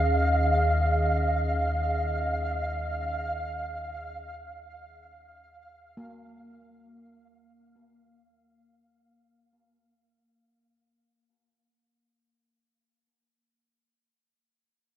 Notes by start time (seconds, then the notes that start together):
Already playing: D#2 D#3 C#4 G#4 D#5 F5
5.97 A#3